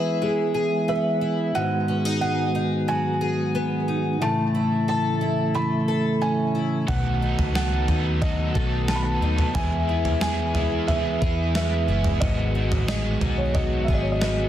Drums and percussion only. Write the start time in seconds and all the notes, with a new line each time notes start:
6.88 kick, floor tom
7.39 floor tom
7.55 snare
7.88 floor tom
8.22 kick, floor tom
8.55 kick
8.88 snare
9.38 floor tom
9.55 kick, floor tom
10.05 floor tom
10.21 snare
10.55 floor tom
10.88 floor tom
11.22 kick
11.55 snare
12.04 floor tom
12.22 kick, floor tom
12.72 floor tom
12.88 snare
13.21 floor tom
13.55 kick, floor tom
13.88 kick
14.22 snare